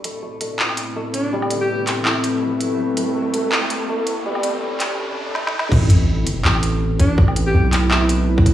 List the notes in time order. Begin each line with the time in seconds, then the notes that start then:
Already playing: A3 C4 E4 B4 E5, riser
0.04 A3, closed hi-hat
0.23 A3
0.41 A3, closed hi-hat
0.59 E4, clap
0.69 low woodblock
0.77 closed hi-hat
0.96 A3
1.14 D4, closed hi-hat
1.33 G3
1.42 low woodblock
1.51 closed hi-hat
1.61 G4
1.87 clap, closed hi-hat, low woodblock
2.05 A3 E4, clap, low woodblock
2.16 E4
2.24 closed hi-hat
2.43 A3
2.61 closed hi-hat
2.97 A3, closed hi-hat
3.16 A3
3.34 A3, closed hi-hat
3.52 E4, clap
3.62 low woodblock
3.70 closed hi-hat
3.89 A3
4.07 closed hi-hat
4.26 G3
4.35 low woodblock
4.43 closed hi-hat
4.80 clap, closed hi-hat, low woodblock
4.98 A3, swell
5.35 A3, snare
5.47 snare
5.59 snare
5.71 A1 A3 C4 E4 B4, kick, crash, sub drop
5.90 closed hi-hat
6.27 closed hi-hat
6.45 A1, clap
6.55 low woodblock
6.63 closed hi-hat
7.00 A1 D4, kick, closed hi-hat
7.18 kick
7.28 low woodblock
7.36 closed hi-hat
7.47 G4
7.54 B1
7.73 clap, closed hi-hat, low woodblock
7.90 E4, clap, low woodblock
8.01 E4
8.09 closed hi-hat
8.38 kick
8.46 kick, closed hi-hat